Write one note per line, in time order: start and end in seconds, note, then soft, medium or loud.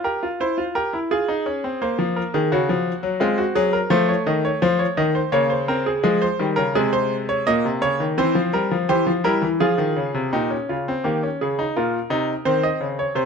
0.04 0.22 G4 medium
0.04 0.27 A#4 medium
0.23 0.40 F4 medium
0.40 0.58 E4 medium
0.40 0.63 C5 medium
0.58 0.75 F4 medium
0.75 0.93 G4 medium
0.75 0.97 A#4 medium
0.93 1.11 E4 medium
1.11 1.28 F4 medium
1.11 1.80 G#4 medium
1.28 1.46 D#4 medium
1.46 1.63 C#4 medium
1.64 1.81 C4 medium
1.82 3.18 A#3 medium
1.82 2.04 C5 medium
1.99 2.21 F3 medium
2.16 2.34 A#4 medium
2.34 2.52 D#3 medium
2.34 2.51 G#4 medium
2.52 2.69 C#3 medium
2.52 3.19 F#4 medium
2.69 2.91 F3 medium
3.03 3.21 F#3 medium
3.20 3.43 G#3 medium
3.20 3.89 C4 medium
3.20 3.38 F4 medium
3.38 3.56 F#4 medium
3.55 3.78 F#3 loud
3.55 3.73 G#4 medium
3.73 3.91 A#4 medium
3.90 4.13 F3 medium
3.90 5.29 A3 medium
3.90 4.09 C5 medium
4.09 4.26 C#5 medium
4.26 4.49 D#3 medium
4.26 4.44 D#5 medium
4.45 4.62 C#5 medium
4.62 4.84 F3 medium
4.62 4.80 C5 medium
4.79 4.97 C#5 medium
4.97 5.20 D#3 medium
4.97 5.15 D#5 medium
5.15 5.33 C5 medium
5.32 6.01 C#3 medium
5.32 5.54 A#3 medium
5.32 5.50 C#5 medium
5.50 5.68 C5 medium
5.68 5.90 C4 medium
5.68 5.86 A#4 medium
5.86 6.02 G#4 medium
6.03 6.26 F3 medium
6.03 6.26 G#3 medium
6.03 6.21 G#4 medium
6.22 6.43 C5 medium
6.39 6.57 D#3 medium
6.39 6.61 G3 medium
6.56 6.74 C#3 medium
6.56 6.74 A#4 medium
6.75 7.44 C3 medium
6.75 7.44 G#3 medium
6.75 6.92 G#4 medium
6.93 7.15 C5 medium
7.29 7.46 C#5 medium
7.47 7.64 A#2 medium
7.47 8.15 A#3 medium
7.47 7.68 D#5 medium
7.65 7.81 C3 medium
7.81 7.98 C#3 medium
7.81 8.04 C#5 medium
8.00 8.17 D#3 medium
8.18 8.34 E3 medium
8.18 8.86 C4 medium
8.18 8.40 C5 medium
8.35 8.52 F3 medium
8.53 8.70 G3 medium
8.53 8.75 A#4 medium
8.72 8.88 F3 medium
8.89 9.06 E3 medium
8.89 9.11 G4 medium
8.89 9.11 C5 medium
9.07 9.23 F3 medium
9.24 9.41 G3 medium
9.24 9.46 E4 medium
9.24 9.46 A#4 medium
9.42 9.59 E3 medium
9.60 9.78 F3 medium
9.60 10.30 F4 medium
9.60 10.30 G#4 medium
9.78 9.95 D#3 medium
9.96 10.14 C#3 medium
10.14 10.32 C3 medium
10.33 10.55 A#2 medium
10.33 10.50 D#4 medium
10.33 10.55 G4 medium
10.50 10.73 C#4 medium
10.69 10.92 C#3 medium
10.69 10.91 F4 medium
10.88 11.05 C4 medium
11.04 11.27 D#3 medium
11.04 11.22 A#3 medium
11.04 11.27 G4 medium
11.23 11.45 C#4 medium
11.41 11.63 C#3 medium
11.41 11.63 G#4 medium
11.59 11.75 D#4 medium
11.76 11.98 A#2 medium
11.76 11.98 F4 medium
11.76 12.44 A#4 medium
12.10 12.32 C3 medium
12.10 12.32 D#4 medium
12.45 12.67 D#3 medium
12.45 13.25 C4 medium
12.45 12.63 C5 medium
12.63 12.85 D#5 medium
12.80 13.02 C#3 medium
12.99 13.16 C#5 medium
13.15 13.25 C3 medium
13.15 13.25 C5 medium